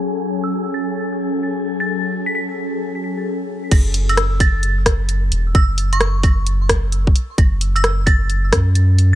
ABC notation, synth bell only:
X:1
M:4/4
L:1/16
Q:"Swing 16ths" 1/4=131
K:F#m
V:1 name="Synth bell"
z3 e'2 z a'2 z6 z a'- | a' z2 b' b' z8 z3 | z3 e'2 z a'2 z8 | e'2 z c'3 z8 z2 |
z3 e'2 z a'2 z8 |]